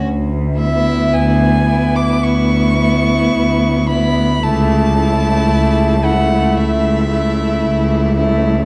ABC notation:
X:1
M:4/4
L:1/16
Q:1/4=56
K:A
V:1 name="Violin"
z2 e2 g3 d' c'6 b2 | a6 f2 e6 z2 |]
V:2 name="Violin"
z2 E4 E4 E4 E2 | E2 E4 E4 E4 E2 |]
V:3 name="Viola"
z2 B,4 B,4 B,4 B,2 | A,2 A,4 A,4 A,4 A,2 |]
V:4 name="Cello" clef=bass
D,,4 D,,4 D,,4 D,,4 | C,,4 C,,4 C,,4 C,,4 |]